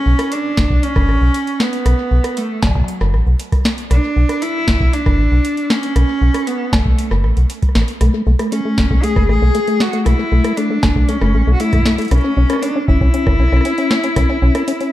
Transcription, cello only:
0.00 0.34 C#4 loud
0.32 0.85 D4 loud
0.83 1.62 C#4 loud
1.60 2.39 B3 loud
2.37 2.64 A3 medium
2.63 3.14 F#3 medium
3.91 4.44 D4 loud
4.42 4.95 E4 loud
4.93 5.72 D4 loud
5.70 6.49 C#4 loud
6.47 6.74 B3 medium
6.73 7.24 A3 medium
8.52 9.05 C#4 loud
9.03 9.28 G#4 loud
9.29 9.82 G#4 loud
9.80 10.05 F#4 loud
10.06 10.59 E4 loud
10.57 11.10 D4 loud
11.08 11.53 C#4 loud
11.53 11.61 F#4 medium
11.60 11.98 E4 loud
12.11 12.64 C#4 loud
12.62 12.87 D4 loud
12.88 14.92 E4 loud

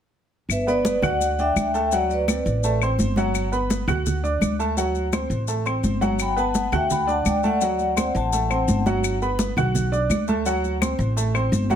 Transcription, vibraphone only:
0.51 0.67 B4 medium
0.51 0.67 E5 medium
0.68 1.02 B4 medium
0.68 1.01 D5 medium
1.03 1.37 D5 medium
1.03 1.39 F#5 loud
1.39 1.73 E5 medium
1.39 1.72 G5 medium
1.74 1.92 E5 medium
1.74 1.93 G5 medium
1.93 2.02 D5 medium
1.93 2.00 F#5 medium
2.11 2.79 B4 medium
2.11 2.78 D5 medium
6.21 6.29 G5 medium
6.21 6.30 B5 loud
6.39 6.71 F#5 medium
6.39 6.75 A5 medium
6.74 6.90 E5 medium
6.74 6.90 G5 medium
6.91 6.99 G5 medium
6.91 7.00 B5 loud
7.10 7.26 F#5 medium
7.10 7.26 A5 medium
7.27 7.35 D5 medium
7.27 7.35 G5 medium
7.46 8.12 D5 medium
7.46 8.12 F#5 medium
8.16 8.83 F#5 medium
8.16 8.83 A5 medium

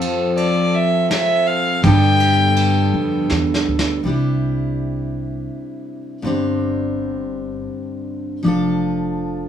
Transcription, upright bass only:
0.00 1.07 F2 medium
1.84 2.90 G2 medium
2.94 3.27 F2 medium
3.31 3.64 E2 medium
3.68 4.01 D2 medium
4.03 5.47 C2 medium
6.24 7.67 G1 medium
8.45 9.48 F1 medium

